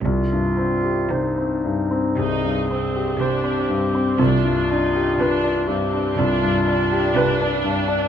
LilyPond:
<<
  \new Staff \with { instrumentName = "Clarinet" } { \time 4/4 \key c \minor \tempo 4 = 60 f'4 ees'4 aes'4 g'4 | f'4. g'8 f'4. r8 | }
  \new Staff \with { instrumentName = "Viola section" } { \time 4/4 \key c \minor r2 ees'8 c'8 d'8 c'8 | d'8 ees'8 d'8 c'8 d'8 d'4. | }
  \new Staff \with { instrumentName = "Grand piano" } { \time 4/4 \key c \minor c,16 g,16 c'16 g'16 c''16 c'16 g,16 c'16 c,16 g,16 c'16 g'16 c''16 c'16 g,16 c'16 | c,16 g,16 d'16 g'16 b'16 d'16 g,16 d'16 c,16 g,16 d'16 g'16 b'16 d'16 g,16 d'16 | }
  \new Staff \with { instrumentName = "Cello section" } { \clef bass \time 4/4 \key c \minor c4 c4 c4 c4 | c4 c4 c4 c4 | }
  \new Staff \with { instrumentName = "Double bass section" } { \clef bass \time 4/4 \key c \minor c,4 r2. | c,4 r2. | }
>>